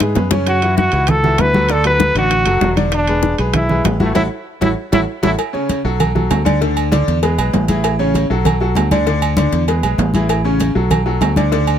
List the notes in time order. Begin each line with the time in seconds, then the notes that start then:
0.00 G#2 G#3 G#4 B4, high bongo, high conga, high timbale
0.15 F#2 G#3 G#4 B4, low bongo, high conga, low timbale
0.31 C#3 C#4 C#5, low bongo, high conga, high timbale
0.47 F#4, high bongo, high conga, high timbale
0.62 E3 E4 F#4, high conga, high timbale
0.77 F#4, high bongo, high conga, low timbale
0.92 C#2 E3 E4 F#4, high timbale
1.07 A4, high bongo, high conga, low conga, high timbale
1.23 E3 E4 F#4, high conga, low conga
1.38 D2 B4, high bongo, low bongo, high conga, high timbale, low timbale
1.54 F#3 F#4 A4, high conga
1.69 D3 D4 A4 D5, high bongo, high conga, high timbale
1.84 F#3 F#4 A4 B4, high bongo, high conga, high timbale
2.00 high bongo, high conga, low timbale
2.15 A1 D3 D4 F#4 D5, high conga, high timbale
2.31 high bongo, high conga, high timbale
2.46 F#1 F#3 F#4 A4, high bongo, high conga, high timbale
2.61 E1 F#3 F#4 A4, high bongo, low bongo, high conga, low timbale
2.76 D3 D4 D5, high bongo, high conga, high timbale
2.92 D4, high bongo, high conga, high timbale
3.07 G#3 G#4 B4, high conga, high timbale
3.23 high bongo, high conga, low timbale
3.38 B1 G#3 G#4 B4, high timbale
3.54 E4, high bongo, high conga, low conga, high timbale
3.69 G#3 G#4 B4, high conga, low conga
3.84 A1, high bongo, low bongo, high conga, high timbale, low timbale
4.00 E3 A3 E4 F#4, high conga
4.15 A1 E4 F#4 A4, low bongo, high conga, high timbale
4.61 A1 E4 F#4 A4, low bongo, high conga, high timbale
4.92 A1 E4 F#4 A4, low bongo, high conga, high timbale
5.23 A1 E4 F#4 A4, low bongo, high conga, high timbale
5.39 cowbell, high conga, low agogo
5.53 C#3 C#4 C#5, high conga
5.69 cowbell, high conga, low timbale, low agogo
5.84 B1 F#3 F#4 A4
6.00 cowbell, high conga, low conga, low agogo
6.15 F#3 F#4 A4, high conga, low conga
6.31 D2, cowbell, high conga, low timbale, low agogo
6.45 D3 D4 D5, cowbell, high conga, low agogo
6.61 D3 D4 D5, cowbell, high conga
6.77 high conga, low agogo
6.92 D3 D4 D5, cowbell, high conga, low timbale, low agogo
7.08 E2, cowbell, high conga
7.23 G#3 G#4 B4, cowbell, high conga, low agogo
7.38 B1 G#3 G#4 B4, high conga, low agogo
7.53 A1, cowbell, high conga, low timbale
7.68 E3 E4 G#4, high conga, low agogo
7.84 cowbell, high conga, low agogo
7.99 C#3 C#4 C#5, high conga
8.14 cowbell, high conga, low timbale, low agogo
8.30 B1 F#3 F#4 A4
8.45 cowbell, high conga, low conga, low agogo
8.60 F#3 F#4 A4, high conga
8.75 D2, cowbell, high conga, low timbale, low agogo
8.91 D3 D4 D5, cowbell, high conga, low agogo
9.06 D3 D4 D5, cowbell, high conga
9.22 high conga, low agogo
9.37 D3 D4 D5, cowbell, high conga, low timbale, low agogo
9.52 E2, cowbell, high conga
9.67 G#3 G#4 B4, cowbell, high conga, low agogo
9.83 B1 G#3 G#4 B4, high conga, low agogo
9.98 A1, cowbell, high conga, low timbale
10.14 E3 E4 G#4, high conga, low agogo
10.29 cowbell, high conga, low agogo
10.45 C#3 C#4 C#5, high conga
10.60 cowbell, high conga, low timbale, low agogo
10.75 B1 F#3 F#4 A4
10.91 cowbell, high conga, low conga, low agogo
11.06 F#3 F#4 A4, high conga
11.21 D2, cowbell, high conga, low timbale, low agogo
11.36 D3 D4 D5, cowbell, high conga, low agogo
11.52 D3 D4 D5, cowbell, high conga
11.67 high conga, low agogo